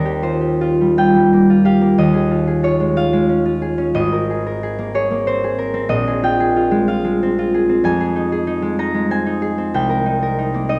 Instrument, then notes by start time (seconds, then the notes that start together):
harp
Already playing: D#2 G3 A#3 C4 A#4
0.05 G4
0.22 F4 C5
0.41 G4
0.61 F4
0.81 G3
0.98 F4 G5
1.16 G3
1.33 A#3
1.50 F4
1.65 G4 F5
1.81 A#3
1.98 D#2 D#5
2.14 G#4
2.31 F4
2.48 G#4
2.63 F4 C#5
2.80 G#3
2.96 F4 F5
3.13 G#3
3.29 C#4
3.45 F4
3.62 G#4
3.78 C#4
3.94 G#1 D#5
4.12 A#4
4.30 G#4
4.46 A#4
4.63 G#4
4.79 A#3
4.94 G#4 C#5
5.11 A#3
5.27 C4 C5
5.44 G#4
5.58 A#4
5.74 C4
5.89 A#1 D#5
6.07 G#4
6.23 F4 G5
6.40 G#4
6.56 F4
6.71 G#3
6.88 F4 F5
7.04 G#3
7.23 C4
7.39 F4
7.54 G#4
7.69 C4
7.84 F2 G#5
8.00 G#4
8.16 D#4
8.32 G#4
8.47 D#4
8.62 G#3
8.79 D#4 A#5
8.94 G#3
9.11 C4 G#5
9.26 D#4
9.42 G#4
9.58 C4
9.74 C2 G5
9.89 A#4
10.06 D#4
10.23 A#4
10.38 D#4
10.54 A#3
10.69 D#4 D#5